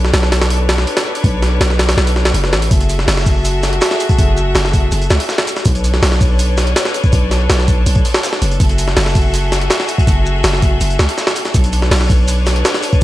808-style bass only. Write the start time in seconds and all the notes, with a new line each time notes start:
Already playing: B1
0.13 B1
1.24 B1
1.60 B1
1.97 B1
2.34 F#1
2.53 A1
2.71 F#1
3.08 F#1
4.19 F#1
4.55 F#1
4.92 F#1
5.10 C#2
5.66 B1
6.02 B1
7.13 B1
7.50 B1
7.86 B1
8.42 F#1
8.60 F#1
8.97 F#1
10.07 F#1
10.44 F#1
10.81 F#1
10.99 C#2
11.55 B1
11.91 B1